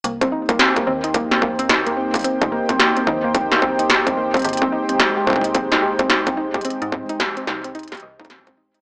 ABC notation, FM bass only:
X:1
M:4/4
L:1/16
Q:"Swing 16ths" 1/4=109
K:Cm
V:1 name="FM bass" clef=bass
C,,2 z4 E,,8- E,,2 | z G,,,2 z3 E,,8- E,,2 | A,,,2 z4 C,,8- C,,2 | z A,,2 z3 C,,4 C,,2 B,,,4 |]